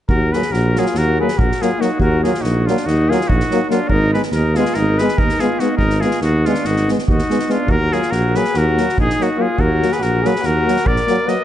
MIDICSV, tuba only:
0, 0, Header, 1, 2, 480
1, 0, Start_track
1, 0, Key_signature, -6, "minor"
1, 0, Tempo, 421348
1, 93, Time_signature, 9, 3, 24, 8
1, 13035, End_track
2, 0, Start_track
2, 0, Title_t, "Tuba"
2, 0, Program_c, 0, 58
2, 105, Note_on_c, 0, 39, 82
2, 375, Note_off_c, 0, 39, 0
2, 589, Note_on_c, 0, 34, 82
2, 862, Note_off_c, 0, 34, 0
2, 1076, Note_on_c, 0, 39, 69
2, 1351, Note_off_c, 0, 39, 0
2, 1564, Note_on_c, 0, 34, 63
2, 1706, Note_off_c, 0, 34, 0
2, 2269, Note_on_c, 0, 39, 91
2, 2541, Note_off_c, 0, 39, 0
2, 2767, Note_on_c, 0, 34, 69
2, 3038, Note_off_c, 0, 34, 0
2, 3261, Note_on_c, 0, 39, 67
2, 3531, Note_off_c, 0, 39, 0
2, 3757, Note_on_c, 0, 34, 80
2, 3892, Note_off_c, 0, 34, 0
2, 4441, Note_on_c, 0, 32, 87
2, 4711, Note_off_c, 0, 32, 0
2, 4920, Note_on_c, 0, 39, 80
2, 5193, Note_off_c, 0, 39, 0
2, 5426, Note_on_c, 0, 32, 80
2, 5696, Note_off_c, 0, 32, 0
2, 5923, Note_on_c, 0, 39, 62
2, 6057, Note_off_c, 0, 39, 0
2, 6588, Note_on_c, 0, 32, 84
2, 6861, Note_off_c, 0, 32, 0
2, 7075, Note_on_c, 0, 39, 71
2, 7349, Note_off_c, 0, 39, 0
2, 7575, Note_on_c, 0, 32, 60
2, 7847, Note_off_c, 0, 32, 0
2, 8067, Note_on_c, 0, 39, 69
2, 8205, Note_off_c, 0, 39, 0
2, 8742, Note_on_c, 0, 39, 84
2, 9015, Note_off_c, 0, 39, 0
2, 9242, Note_on_c, 0, 34, 71
2, 9512, Note_off_c, 0, 34, 0
2, 9745, Note_on_c, 0, 39, 80
2, 10012, Note_off_c, 0, 39, 0
2, 10227, Note_on_c, 0, 34, 74
2, 10362, Note_off_c, 0, 34, 0
2, 10917, Note_on_c, 0, 39, 90
2, 11183, Note_off_c, 0, 39, 0
2, 11396, Note_on_c, 0, 34, 68
2, 11666, Note_off_c, 0, 34, 0
2, 11891, Note_on_c, 0, 39, 72
2, 12159, Note_off_c, 0, 39, 0
2, 12372, Note_on_c, 0, 34, 70
2, 12509, Note_off_c, 0, 34, 0
2, 13035, End_track
0, 0, End_of_file